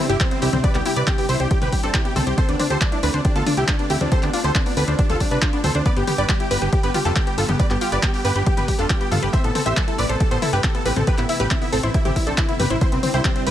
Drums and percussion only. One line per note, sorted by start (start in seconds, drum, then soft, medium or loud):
0.10 closed hi-hat medium
0.20 kick loud
0.20 clap loud
0.20 closed hi-hat medium
0.31 closed hi-hat medium
0.42 open hi-hat loud
0.53 closed hi-hat medium
0.53 mid tom medium
0.64 kick loud
0.64 closed hi-hat medium
0.75 clap soft
0.75 closed hi-hat medium
0.86 open hi-hat loud
0.96 closed hi-hat medium
1.07 kick loud
1.07 clap loud
1.07 closed hi-hat medium
1.18 open hi-hat medium
1.29 open hi-hat loud
1.40 closed hi-hat medium
1.51 kick loud
1.51 closed hi-hat medium
1.62 closed hi-hat medium
1.62 mid tom medium
1.72 kick medium
1.72 open hi-hat loud
1.83 closed hi-hat medium
1.94 kick loud
1.94 clap loud
1.94 closed hi-hat medium
2.05 closed hi-hat medium
2.16 open hi-hat loud
2.16 mid tom medium
2.27 closed hi-hat medium
2.38 kick loud
2.38 closed hi-hat medium
2.49 closed hi-hat soft
2.60 open hi-hat loud
2.60 mid tom medium
2.70 closed hi-hat medium
2.81 kick loud
2.81 clap loud
2.81 closed hi-hat medium
2.92 closed hi-hat soft
3.03 open hi-hat loud
3.14 closed hi-hat medium
3.25 kick loud
3.25 closed hi-hat medium
3.36 closed hi-hat medium
3.46 open hi-hat loud
3.46 mid tom medium
3.57 closed hi-hat medium
3.68 kick loud
3.68 clap loud
3.68 closed hi-hat medium
3.79 closed hi-hat soft
3.90 open hi-hat loud
4.01 closed hi-hat medium
4.01 mid tom medium
4.12 kick loud
4.12 closed hi-hat medium
4.23 clap soft
4.23 closed hi-hat medium
4.33 open hi-hat loud
4.44 closed hi-hat soft
4.55 kick loud
4.55 clap loud
4.55 closed hi-hat medium
4.66 open hi-hat medium
4.77 open hi-hat loud
4.99 kick loud
4.99 closed hi-hat medium
5.10 closed hi-hat medium
5.10 mid tom medium
5.20 kick medium
5.20 open hi-hat loud
5.31 closed hi-hat medium
5.42 kick loud
5.42 clap loud
5.42 closed hi-hat medium
5.53 closed hi-hat soft
5.64 open hi-hat loud
5.64 mid tom medium
5.75 closed hi-hat soft
5.86 kick loud
5.86 closed hi-hat medium
5.97 closed hi-hat soft
6.07 open hi-hat loud
6.07 mid tom medium
6.18 closed hi-hat soft
6.29 kick loud
6.29 clap loud
6.29 closed hi-hat medium
6.40 closed hi-hat medium
6.51 open hi-hat loud
6.62 closed hi-hat medium
6.73 kick loud
6.73 closed hi-hat medium
6.83 closed hi-hat medium
6.94 open hi-hat loud
6.94 mid tom medium
7.05 closed hi-hat medium
7.16 kick loud
7.16 clap loud
7.16 closed hi-hat medium
7.27 closed hi-hat medium
7.38 open hi-hat loud
7.49 closed hi-hat medium
7.49 mid tom medium
7.60 kick loud
7.60 closed hi-hat medium
7.70 clap soft
7.70 closed hi-hat medium
7.81 open hi-hat loud
7.92 closed hi-hat medium
8.03 kick loud
8.03 clap loud
8.03 closed hi-hat medium
8.14 open hi-hat medium
8.25 open hi-hat loud
8.36 closed hi-hat soft
8.46 kick loud
8.46 closed hi-hat medium
8.57 closed hi-hat medium
8.57 mid tom medium
8.68 kick medium
8.68 open hi-hat loud
8.79 closed hi-hat medium
8.90 kick loud
8.90 clap loud
8.90 closed hi-hat medium
9.01 closed hi-hat medium
9.12 open hi-hat loud
9.12 mid tom medium
9.23 closed hi-hat medium
9.33 kick loud
9.33 closed hi-hat medium
9.44 closed hi-hat medium
9.55 open hi-hat loud
9.55 mid tom medium
9.66 closed hi-hat medium
9.77 kick loud
9.77 clap loud
9.77 closed hi-hat medium
9.88 closed hi-hat medium
9.99 open hi-hat loud
10.10 closed hi-hat medium
10.20 kick loud
10.20 closed hi-hat medium
10.31 closed hi-hat medium
10.42 open hi-hat loud
10.42 mid tom medium
10.53 closed hi-hat medium
10.64 kick loud
10.64 clap loud
10.64 closed hi-hat medium
10.75 closed hi-hat medium
10.86 open hi-hat loud
10.96 closed hi-hat medium
10.96 mid tom medium
11.07 kick loud
11.07 closed hi-hat medium
11.18 clap soft
11.18 closed hi-hat medium
11.29 open hi-hat loud
11.40 closed hi-hat medium
11.51 kick loud
11.51 clap loud
11.51 closed hi-hat medium
11.62 open hi-hat medium
11.73 open hi-hat loud
11.83 closed hi-hat medium
11.94 kick loud
11.94 closed hi-hat medium
12.05 closed hi-hat medium
12.05 mid tom medium
12.16 kick medium
12.16 open hi-hat loud
12.27 closed hi-hat medium
12.38 kick loud
12.38 clap loud
12.38 closed hi-hat medium
12.49 closed hi-hat medium
12.60 open hi-hat loud
12.60 mid tom medium
12.70 closed hi-hat medium
12.81 kick loud
12.81 closed hi-hat medium
12.92 closed hi-hat medium
13.03 open hi-hat loud
13.03 mid tom medium
13.14 closed hi-hat medium
13.25 kick loud
13.25 clap loud
13.25 closed hi-hat medium
13.36 closed hi-hat medium
13.47 open hi-hat loud